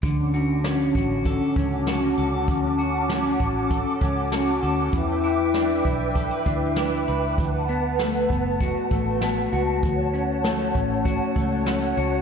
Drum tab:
HH |xxxxxxxx|xxxxxxxx|xxxxxxxx|xxxxxxxx|
SD |--o---o-|--o---o-|--o---o-|--o---o-|
BD |o--ooo--|o--ooo--|o--ooo--|o--ooo--|

HH |xxxxxxxx|
SD |--o---o-|
BD |o--ooo--|